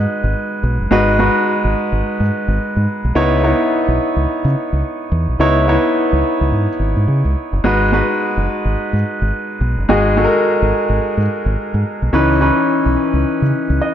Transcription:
Already playing: grand piano G#3 D#4 F#4 B4
0.24 fingered electric bass G#1
0.63 fingered electric bass B1
0.80 fingered electric bass F#1
0.91 fingered electric bass G#1, grand piano G#3 D#4 F#4 B4
1.19 grand piano G#3 D#4 F#4 B4
1.65 fingered electric bass G#1
1.92 fingered electric bass G#1
2.04 muted fingered electric bass stroke
2.20 fingered electric bass G#2
2.48 fingered electric bass G#1
2.77 fingered electric bass G#2
3.04 fingered electric bass B1
3.15 fingered electric bass C#2, grand piano B3 D#4 E4 C#5
3.43 grand piano B3 D#4 E4 C#5
3.88 fingered electric bass B1
4.16 fingered electric bass C#2
4.28 muted fingered electric bass stroke
4.45 fingered electric bass C#3
4.73 fingered electric bass C#2
5.12 fingered electric bass E2
5.28 fingered electric bass B1
5.39 fingered electric bass C#2, grand piano B3 D#4 E4 C#5
5.68 grand piano B3 D#4 E4 C#5
6.13 fingered electric bass C#2
6.41 fingered electric bass C#2
6.52 fingered electric bass G#2
6.79 fingered electric bass G#1
6.96 fingered electric bass G#2
7.08 fingered electric bass C#3
7.25 fingered electric bass C#2
7.53 fingered electric bass F#1
7.64 fingered electric bass G#1, grand piano G#3 D#4 F#4 B4
7.92 grand piano G#3 D#4 F#4 B4
8.37 fingered electric bass F#1
8.65 fingered electric bass G#1
8.93 fingered electric bass G#2
9.22 fingered electric bass G#1
9.61 fingered electric bass B1
9.78 fingered electric bass F#1
9.89 fingered electric bass G#1, grand piano G#3 D#4 F#4 G#4
10.17 grand piano G#3 D#4 F#4 A4
10.24 grand piano A#4
10.62 fingered electric bass G#1
10.90 fingered electric bass G#1
11.01 muted fingered electric bass stroke
11.17 fingered electric bass G#2
11.46 fingered electric bass G#1
11.74 fingered electric bass G#2
12.02 fingered electric bass B1
12.13 fingered electric bass C#2, grand piano E3 C#4 D#4 B4
12.40 grand piano E3 C#4 D#4 B4
12.86 fingered electric bass B1
13.14 fingered electric bass C#2
13.25 muted fingered electric bass stroke
13.42 fingered electric bass C#3
13.70 fingered electric bass C#2
13.81 grand piano D#5

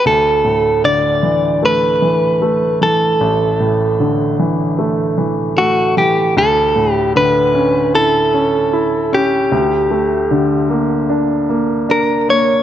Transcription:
0.05 grand piano D2, clean electric guitar A4
0.45 grand piano A2
0.84 grand piano D3, clean electric guitar D5
1.23 grand piano E3
1.63 grand piano A3, clean electric guitar B4
2.02 grand piano E3
2.42 grand piano A3
2.81 grand piano E3, clean electric guitar A4
3.20 grand piano A1
3.60 grand piano A2
4.00 grand piano D3
4.40 grand piano E3
4.79 grand piano A3
5.18 grand piano E3
5.57 grand piano A3, clean electric guitar F#4
5.97 grand piano E3, clean electric guitar G4
6.37 grand piano D2, clean electric guitar A4
6.76 grand piano A2
6.92 clean electric guitar G4
7.16 grand piano D3, clean electric guitar B4
7.54 grand piano C#4
7.94 grand piano E4, clean electric guitar A4
8.34 grand piano C#4
8.73 grand piano E4
9.13 grand piano C#4, clean electric guitar G4
9.52 grand piano D2
9.91 grand piano A3
10.31 grand piano D3
10.70 grand piano A#3
11.09 grand piano D4
11.49 grand piano A#3
11.89 grand piano D4, clean electric guitar A#4
12.29 grand piano A#3, clean electric guitar C#5

